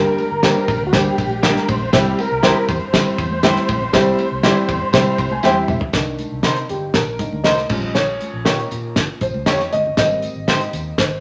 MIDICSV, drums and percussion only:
0, 0, Header, 1, 2, 480
1, 0, Start_track
1, 0, Key_signature, -3, "minor"
1, 0, Tempo, 502513
1, 1846, Time_signature, 4, 2, 24, 8
1, 10700, End_track
2, 0, Start_track
2, 0, Title_t, "Drums"
2, 175, Note_on_c, 9, 51, 43
2, 178, Note_on_c, 9, 62, 32
2, 178, Note_on_c, 9, 63, 43
2, 189, Note_on_c, 9, 54, 52
2, 271, Note_off_c, 9, 51, 0
2, 273, Note_off_c, 9, 62, 0
2, 273, Note_off_c, 9, 63, 0
2, 285, Note_off_c, 9, 54, 0
2, 410, Note_on_c, 9, 38, 113
2, 411, Note_on_c, 9, 51, 63
2, 414, Note_on_c, 9, 54, 103
2, 506, Note_off_c, 9, 38, 0
2, 507, Note_off_c, 9, 51, 0
2, 510, Note_off_c, 9, 54, 0
2, 650, Note_on_c, 9, 51, 59
2, 652, Note_on_c, 9, 36, 92
2, 654, Note_on_c, 9, 62, 30
2, 654, Note_on_c, 9, 64, 63
2, 664, Note_on_c, 9, 54, 54
2, 746, Note_off_c, 9, 51, 0
2, 748, Note_off_c, 9, 36, 0
2, 749, Note_off_c, 9, 62, 0
2, 749, Note_off_c, 9, 64, 0
2, 759, Note_off_c, 9, 54, 0
2, 887, Note_on_c, 9, 38, 127
2, 891, Note_on_c, 9, 51, 71
2, 893, Note_on_c, 9, 36, 103
2, 901, Note_on_c, 9, 54, 89
2, 982, Note_off_c, 9, 38, 0
2, 986, Note_off_c, 9, 51, 0
2, 988, Note_off_c, 9, 36, 0
2, 996, Note_off_c, 9, 54, 0
2, 1129, Note_on_c, 9, 36, 83
2, 1130, Note_on_c, 9, 51, 58
2, 1132, Note_on_c, 9, 62, 31
2, 1146, Note_on_c, 9, 54, 47
2, 1225, Note_off_c, 9, 36, 0
2, 1226, Note_off_c, 9, 51, 0
2, 1227, Note_off_c, 9, 62, 0
2, 1238, Note_on_c, 9, 63, 67
2, 1242, Note_off_c, 9, 54, 0
2, 1334, Note_off_c, 9, 63, 0
2, 1367, Note_on_c, 9, 38, 121
2, 1367, Note_on_c, 9, 51, 74
2, 1367, Note_on_c, 9, 63, 65
2, 1373, Note_on_c, 9, 54, 100
2, 1462, Note_off_c, 9, 38, 0
2, 1463, Note_off_c, 9, 51, 0
2, 1463, Note_off_c, 9, 63, 0
2, 1468, Note_off_c, 9, 54, 0
2, 1492, Note_on_c, 9, 38, 33
2, 1588, Note_off_c, 9, 38, 0
2, 1608, Note_on_c, 9, 51, 66
2, 1608, Note_on_c, 9, 62, 30
2, 1608, Note_on_c, 9, 63, 68
2, 1608, Note_on_c, 9, 64, 66
2, 1613, Note_on_c, 9, 36, 100
2, 1616, Note_on_c, 9, 54, 55
2, 1703, Note_off_c, 9, 62, 0
2, 1703, Note_off_c, 9, 63, 0
2, 1703, Note_off_c, 9, 64, 0
2, 1704, Note_off_c, 9, 51, 0
2, 1709, Note_off_c, 9, 36, 0
2, 1711, Note_off_c, 9, 54, 0
2, 1728, Note_on_c, 9, 64, 62
2, 1824, Note_off_c, 9, 64, 0
2, 1844, Note_on_c, 9, 38, 106
2, 1844, Note_on_c, 9, 51, 75
2, 1849, Note_on_c, 9, 36, 115
2, 1850, Note_on_c, 9, 54, 98
2, 1939, Note_off_c, 9, 38, 0
2, 1940, Note_off_c, 9, 51, 0
2, 1945, Note_off_c, 9, 36, 0
2, 1945, Note_off_c, 9, 54, 0
2, 2088, Note_on_c, 9, 51, 46
2, 2089, Note_on_c, 9, 62, 31
2, 2089, Note_on_c, 9, 63, 47
2, 2104, Note_on_c, 9, 54, 55
2, 2183, Note_off_c, 9, 51, 0
2, 2185, Note_off_c, 9, 62, 0
2, 2185, Note_off_c, 9, 63, 0
2, 2199, Note_off_c, 9, 54, 0
2, 2323, Note_on_c, 9, 38, 122
2, 2324, Note_on_c, 9, 51, 64
2, 2336, Note_on_c, 9, 54, 96
2, 2419, Note_off_c, 9, 38, 0
2, 2420, Note_off_c, 9, 51, 0
2, 2432, Note_off_c, 9, 54, 0
2, 2560, Note_on_c, 9, 64, 63
2, 2566, Note_on_c, 9, 36, 94
2, 2567, Note_on_c, 9, 54, 55
2, 2568, Note_on_c, 9, 51, 56
2, 2656, Note_off_c, 9, 64, 0
2, 2662, Note_off_c, 9, 36, 0
2, 2663, Note_off_c, 9, 51, 0
2, 2663, Note_off_c, 9, 54, 0
2, 2804, Note_on_c, 9, 54, 87
2, 2805, Note_on_c, 9, 38, 127
2, 2806, Note_on_c, 9, 36, 103
2, 2809, Note_on_c, 9, 51, 71
2, 2899, Note_off_c, 9, 54, 0
2, 2900, Note_off_c, 9, 38, 0
2, 2902, Note_off_c, 9, 36, 0
2, 2904, Note_off_c, 9, 51, 0
2, 3041, Note_on_c, 9, 36, 83
2, 3042, Note_on_c, 9, 51, 52
2, 3045, Note_on_c, 9, 62, 33
2, 3060, Note_on_c, 9, 54, 50
2, 3137, Note_off_c, 9, 36, 0
2, 3138, Note_off_c, 9, 51, 0
2, 3140, Note_off_c, 9, 62, 0
2, 3152, Note_on_c, 9, 63, 73
2, 3156, Note_off_c, 9, 54, 0
2, 3248, Note_off_c, 9, 63, 0
2, 3276, Note_on_c, 9, 54, 109
2, 3278, Note_on_c, 9, 38, 109
2, 3278, Note_on_c, 9, 51, 78
2, 3281, Note_on_c, 9, 63, 68
2, 3371, Note_off_c, 9, 54, 0
2, 3373, Note_off_c, 9, 38, 0
2, 3373, Note_off_c, 9, 51, 0
2, 3377, Note_off_c, 9, 63, 0
2, 3403, Note_on_c, 9, 38, 33
2, 3499, Note_off_c, 9, 38, 0
2, 3519, Note_on_c, 9, 51, 65
2, 3522, Note_on_c, 9, 54, 47
2, 3524, Note_on_c, 9, 36, 94
2, 3525, Note_on_c, 9, 62, 28
2, 3525, Note_on_c, 9, 63, 64
2, 3525, Note_on_c, 9, 64, 62
2, 3615, Note_off_c, 9, 51, 0
2, 3617, Note_off_c, 9, 54, 0
2, 3620, Note_off_c, 9, 36, 0
2, 3620, Note_off_c, 9, 62, 0
2, 3620, Note_off_c, 9, 63, 0
2, 3620, Note_off_c, 9, 64, 0
2, 3635, Note_on_c, 9, 64, 62
2, 3731, Note_off_c, 9, 64, 0
2, 3758, Note_on_c, 9, 38, 106
2, 3758, Note_on_c, 9, 54, 99
2, 3759, Note_on_c, 9, 51, 71
2, 3761, Note_on_c, 9, 36, 120
2, 3853, Note_off_c, 9, 38, 0
2, 3854, Note_off_c, 9, 51, 0
2, 3854, Note_off_c, 9, 54, 0
2, 3857, Note_off_c, 9, 36, 0
2, 3996, Note_on_c, 9, 62, 32
2, 3996, Note_on_c, 9, 63, 49
2, 3998, Note_on_c, 9, 51, 45
2, 4005, Note_on_c, 9, 54, 51
2, 4091, Note_off_c, 9, 62, 0
2, 4091, Note_off_c, 9, 63, 0
2, 4093, Note_off_c, 9, 51, 0
2, 4100, Note_off_c, 9, 54, 0
2, 4235, Note_on_c, 9, 38, 114
2, 4235, Note_on_c, 9, 54, 97
2, 4236, Note_on_c, 9, 51, 67
2, 4331, Note_off_c, 9, 38, 0
2, 4331, Note_off_c, 9, 54, 0
2, 4332, Note_off_c, 9, 51, 0
2, 4476, Note_on_c, 9, 62, 31
2, 4476, Note_on_c, 9, 64, 61
2, 4477, Note_on_c, 9, 36, 89
2, 4480, Note_on_c, 9, 51, 55
2, 4481, Note_on_c, 9, 54, 57
2, 4571, Note_off_c, 9, 62, 0
2, 4571, Note_off_c, 9, 64, 0
2, 4572, Note_off_c, 9, 36, 0
2, 4575, Note_off_c, 9, 51, 0
2, 4577, Note_off_c, 9, 54, 0
2, 4708, Note_on_c, 9, 54, 97
2, 4716, Note_on_c, 9, 36, 113
2, 4716, Note_on_c, 9, 38, 127
2, 4720, Note_on_c, 9, 51, 78
2, 4804, Note_off_c, 9, 54, 0
2, 4811, Note_off_c, 9, 38, 0
2, 4812, Note_off_c, 9, 36, 0
2, 4815, Note_off_c, 9, 51, 0
2, 4952, Note_on_c, 9, 36, 81
2, 4956, Note_on_c, 9, 51, 52
2, 4959, Note_on_c, 9, 62, 34
2, 4965, Note_on_c, 9, 54, 46
2, 5048, Note_off_c, 9, 36, 0
2, 5052, Note_off_c, 9, 51, 0
2, 5054, Note_off_c, 9, 62, 0
2, 5060, Note_off_c, 9, 54, 0
2, 5070, Note_on_c, 9, 63, 69
2, 5166, Note_off_c, 9, 63, 0
2, 5186, Note_on_c, 9, 54, 104
2, 5190, Note_on_c, 9, 62, 30
2, 5190, Note_on_c, 9, 63, 67
2, 5194, Note_on_c, 9, 38, 59
2, 5281, Note_off_c, 9, 54, 0
2, 5285, Note_off_c, 9, 62, 0
2, 5285, Note_off_c, 9, 63, 0
2, 5289, Note_off_c, 9, 38, 0
2, 5428, Note_on_c, 9, 45, 94
2, 5430, Note_on_c, 9, 62, 29
2, 5430, Note_on_c, 9, 63, 67
2, 5430, Note_on_c, 9, 64, 66
2, 5435, Note_on_c, 9, 54, 49
2, 5524, Note_off_c, 9, 45, 0
2, 5525, Note_off_c, 9, 62, 0
2, 5525, Note_off_c, 9, 63, 0
2, 5525, Note_off_c, 9, 64, 0
2, 5531, Note_off_c, 9, 54, 0
2, 5538, Note_on_c, 9, 64, 64
2, 5549, Note_on_c, 9, 43, 103
2, 5633, Note_off_c, 9, 64, 0
2, 5645, Note_off_c, 9, 43, 0
2, 5665, Note_on_c, 9, 54, 95
2, 5668, Note_on_c, 9, 38, 100
2, 5669, Note_on_c, 9, 42, 85
2, 5672, Note_on_c, 9, 36, 116
2, 5760, Note_off_c, 9, 54, 0
2, 5764, Note_off_c, 9, 38, 0
2, 5765, Note_off_c, 9, 42, 0
2, 5767, Note_off_c, 9, 36, 0
2, 5907, Note_on_c, 9, 62, 29
2, 5907, Note_on_c, 9, 63, 43
2, 5909, Note_on_c, 9, 42, 52
2, 5925, Note_on_c, 9, 54, 47
2, 6003, Note_off_c, 9, 62, 0
2, 6003, Note_off_c, 9, 63, 0
2, 6004, Note_off_c, 9, 42, 0
2, 6021, Note_off_c, 9, 54, 0
2, 6143, Note_on_c, 9, 38, 114
2, 6143, Note_on_c, 9, 42, 73
2, 6153, Note_on_c, 9, 54, 91
2, 6238, Note_off_c, 9, 38, 0
2, 6239, Note_off_c, 9, 42, 0
2, 6248, Note_off_c, 9, 54, 0
2, 6269, Note_on_c, 9, 42, 47
2, 6365, Note_off_c, 9, 42, 0
2, 6393, Note_on_c, 9, 42, 66
2, 6394, Note_on_c, 9, 64, 58
2, 6398, Note_on_c, 9, 54, 50
2, 6489, Note_off_c, 9, 42, 0
2, 6490, Note_off_c, 9, 64, 0
2, 6494, Note_off_c, 9, 54, 0
2, 6628, Note_on_c, 9, 38, 123
2, 6632, Note_on_c, 9, 36, 93
2, 6632, Note_on_c, 9, 42, 82
2, 6636, Note_on_c, 9, 62, 28
2, 6638, Note_on_c, 9, 54, 83
2, 6723, Note_off_c, 9, 38, 0
2, 6727, Note_off_c, 9, 42, 0
2, 6728, Note_off_c, 9, 36, 0
2, 6731, Note_off_c, 9, 62, 0
2, 6733, Note_off_c, 9, 54, 0
2, 6869, Note_on_c, 9, 42, 69
2, 6871, Note_on_c, 9, 36, 77
2, 6885, Note_on_c, 9, 62, 30
2, 6891, Note_on_c, 9, 54, 41
2, 6964, Note_off_c, 9, 42, 0
2, 6967, Note_off_c, 9, 36, 0
2, 6981, Note_off_c, 9, 62, 0
2, 6986, Note_off_c, 9, 54, 0
2, 6996, Note_on_c, 9, 63, 68
2, 7091, Note_off_c, 9, 63, 0
2, 7110, Note_on_c, 9, 38, 109
2, 7111, Note_on_c, 9, 42, 89
2, 7116, Note_on_c, 9, 54, 99
2, 7125, Note_on_c, 9, 63, 67
2, 7206, Note_off_c, 9, 38, 0
2, 7206, Note_off_c, 9, 42, 0
2, 7212, Note_off_c, 9, 54, 0
2, 7221, Note_off_c, 9, 63, 0
2, 7233, Note_on_c, 9, 38, 30
2, 7329, Note_off_c, 9, 38, 0
2, 7349, Note_on_c, 9, 49, 76
2, 7355, Note_on_c, 9, 36, 111
2, 7360, Note_on_c, 9, 54, 49
2, 7364, Note_on_c, 9, 63, 61
2, 7364, Note_on_c, 9, 64, 66
2, 7444, Note_off_c, 9, 49, 0
2, 7450, Note_off_c, 9, 36, 0
2, 7455, Note_off_c, 9, 54, 0
2, 7459, Note_off_c, 9, 63, 0
2, 7459, Note_off_c, 9, 64, 0
2, 7475, Note_on_c, 9, 64, 58
2, 7571, Note_off_c, 9, 64, 0
2, 7595, Note_on_c, 9, 38, 96
2, 7596, Note_on_c, 9, 42, 85
2, 7597, Note_on_c, 9, 54, 85
2, 7604, Note_on_c, 9, 62, 30
2, 7690, Note_off_c, 9, 38, 0
2, 7691, Note_off_c, 9, 42, 0
2, 7692, Note_off_c, 9, 54, 0
2, 7699, Note_off_c, 9, 62, 0
2, 7838, Note_on_c, 9, 42, 51
2, 7846, Note_on_c, 9, 62, 29
2, 7846, Note_on_c, 9, 63, 43
2, 7848, Note_on_c, 9, 54, 50
2, 7933, Note_off_c, 9, 42, 0
2, 7942, Note_off_c, 9, 62, 0
2, 7942, Note_off_c, 9, 63, 0
2, 7944, Note_off_c, 9, 54, 0
2, 8077, Note_on_c, 9, 38, 116
2, 8078, Note_on_c, 9, 42, 71
2, 8081, Note_on_c, 9, 54, 92
2, 8088, Note_on_c, 9, 62, 31
2, 8172, Note_off_c, 9, 38, 0
2, 8173, Note_off_c, 9, 42, 0
2, 8177, Note_off_c, 9, 54, 0
2, 8184, Note_off_c, 9, 62, 0
2, 8209, Note_on_c, 9, 42, 44
2, 8304, Note_off_c, 9, 42, 0
2, 8319, Note_on_c, 9, 54, 54
2, 8325, Note_on_c, 9, 42, 63
2, 8326, Note_on_c, 9, 64, 58
2, 8414, Note_off_c, 9, 54, 0
2, 8421, Note_off_c, 9, 42, 0
2, 8422, Note_off_c, 9, 64, 0
2, 8559, Note_on_c, 9, 38, 119
2, 8559, Note_on_c, 9, 54, 80
2, 8563, Note_on_c, 9, 36, 103
2, 8563, Note_on_c, 9, 42, 81
2, 8568, Note_on_c, 9, 62, 27
2, 8654, Note_off_c, 9, 38, 0
2, 8655, Note_off_c, 9, 54, 0
2, 8658, Note_off_c, 9, 42, 0
2, 8659, Note_off_c, 9, 36, 0
2, 8663, Note_off_c, 9, 62, 0
2, 8797, Note_on_c, 9, 42, 62
2, 8801, Note_on_c, 9, 36, 74
2, 8817, Note_on_c, 9, 54, 45
2, 8892, Note_off_c, 9, 42, 0
2, 8896, Note_off_c, 9, 36, 0
2, 8912, Note_off_c, 9, 54, 0
2, 8925, Note_on_c, 9, 63, 72
2, 9020, Note_off_c, 9, 63, 0
2, 9038, Note_on_c, 9, 38, 108
2, 9039, Note_on_c, 9, 42, 86
2, 9040, Note_on_c, 9, 54, 94
2, 9051, Note_on_c, 9, 63, 62
2, 9134, Note_off_c, 9, 38, 0
2, 9134, Note_off_c, 9, 42, 0
2, 9136, Note_off_c, 9, 54, 0
2, 9147, Note_off_c, 9, 63, 0
2, 9167, Note_on_c, 9, 38, 29
2, 9263, Note_off_c, 9, 38, 0
2, 9287, Note_on_c, 9, 54, 49
2, 9290, Note_on_c, 9, 42, 70
2, 9294, Note_on_c, 9, 62, 29
2, 9294, Note_on_c, 9, 63, 66
2, 9294, Note_on_c, 9, 64, 63
2, 9382, Note_off_c, 9, 54, 0
2, 9385, Note_off_c, 9, 42, 0
2, 9390, Note_off_c, 9, 62, 0
2, 9390, Note_off_c, 9, 63, 0
2, 9390, Note_off_c, 9, 64, 0
2, 9416, Note_on_c, 9, 64, 57
2, 9511, Note_off_c, 9, 64, 0
2, 9524, Note_on_c, 9, 54, 86
2, 9526, Note_on_c, 9, 38, 105
2, 9526, Note_on_c, 9, 42, 85
2, 9528, Note_on_c, 9, 62, 32
2, 9530, Note_on_c, 9, 36, 115
2, 9619, Note_off_c, 9, 54, 0
2, 9621, Note_off_c, 9, 38, 0
2, 9622, Note_off_c, 9, 42, 0
2, 9624, Note_off_c, 9, 62, 0
2, 9626, Note_off_c, 9, 36, 0
2, 9766, Note_on_c, 9, 42, 53
2, 9774, Note_on_c, 9, 62, 27
2, 9774, Note_on_c, 9, 63, 45
2, 9783, Note_on_c, 9, 54, 46
2, 9862, Note_off_c, 9, 42, 0
2, 9870, Note_off_c, 9, 62, 0
2, 9870, Note_off_c, 9, 63, 0
2, 9878, Note_off_c, 9, 54, 0
2, 10009, Note_on_c, 9, 38, 111
2, 10009, Note_on_c, 9, 54, 93
2, 10010, Note_on_c, 9, 42, 71
2, 10105, Note_off_c, 9, 38, 0
2, 10105, Note_off_c, 9, 54, 0
2, 10106, Note_off_c, 9, 42, 0
2, 10137, Note_on_c, 9, 42, 47
2, 10233, Note_off_c, 9, 42, 0
2, 10251, Note_on_c, 9, 54, 55
2, 10253, Note_on_c, 9, 42, 68
2, 10257, Note_on_c, 9, 62, 28
2, 10257, Note_on_c, 9, 64, 61
2, 10346, Note_off_c, 9, 54, 0
2, 10348, Note_off_c, 9, 42, 0
2, 10353, Note_off_c, 9, 62, 0
2, 10353, Note_off_c, 9, 64, 0
2, 10489, Note_on_c, 9, 38, 122
2, 10490, Note_on_c, 9, 54, 85
2, 10491, Note_on_c, 9, 62, 27
2, 10493, Note_on_c, 9, 36, 110
2, 10493, Note_on_c, 9, 42, 85
2, 10584, Note_off_c, 9, 38, 0
2, 10586, Note_off_c, 9, 54, 0
2, 10587, Note_off_c, 9, 62, 0
2, 10588, Note_off_c, 9, 36, 0
2, 10588, Note_off_c, 9, 42, 0
2, 10700, End_track
0, 0, End_of_file